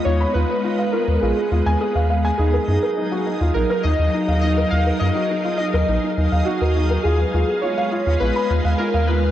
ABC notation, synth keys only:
X:1
M:4/4
L:1/8
Q:1/4=103
K:Ebm
V:1 name="Synth keys"
d c2 B A3 z | A4 B e2 e | f e2 e3 G2 | A2 d2 c2 B c |]